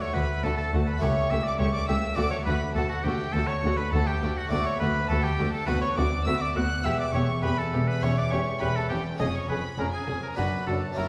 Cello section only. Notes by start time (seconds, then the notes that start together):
0.14 D2
0.43 D2
0.72 D2
1.01 C#2
1.31 C#2
1.60 C#2
1.89 C#2
2.18 D2
2.46 D2
2.76 D2
3.05 D2
3.34 D2
3.63 D2
3.92 D2
4.22 D2
4.50 D2
4.81 D2
5.09 D2
5.39 D2
5.68 D2
5.97 D2
6.27 D2
6.56 D2
6.85 E2
7.14 E2
7.44 E2
7.73 E2
8.03 E2
8.32 E2
8.62 E2
8.91 E2
9.20 F2
9.50 F2
9.79 F2
10.08 F2
10.38 F#2
10.67 F#2
10.97 F#2